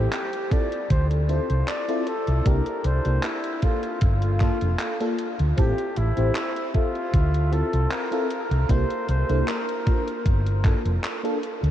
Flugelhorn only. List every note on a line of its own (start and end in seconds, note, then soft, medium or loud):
0.12 0.53 G4 loud
0.52 0.90 D5 loud
0.90 1.06 C5 medium
1.29 1.70 C5 medium
1.68 2.09 D5 loud
2.08 2.48 A4 medium
2.47 2.87 A#4 loud
2.86 3.26 C5 loud
3.25 3.65 E4 medium
3.64 4.02 F4 medium
4.02 5.15 F4 medium
5.58 5.99 G4 medium
5.97 6.74 E4 loud
6.75 7.54 F4 loud
7.53 7.93 A4 medium
7.92 8.72 A#4 loud
8.70 9.09 C5 loud
9.10 9.50 C5 loud
9.49 10.65 A#4 loud